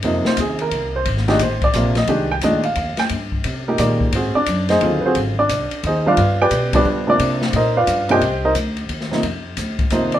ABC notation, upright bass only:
X:1
M:3/4
L:1/8
Q:"Swing" 1/4=176
K:Cm
V:1 name="Upright bass" clef=bass
F,, z E,,2 C,,2 | A,,,2 =A,,,2 B,,,2 | C,,2 D,,2 E,, z | G,,2 C,2 B,,2 |
A,, z _G,,2 E,, z | A,,,2 C,, z E,,2 | G,,2 =B,,2 D,2 | C,2 B,,2 G,,2 |
C,,2 D,,2 E,,2 | F,,2 D,,2 E,,2 |]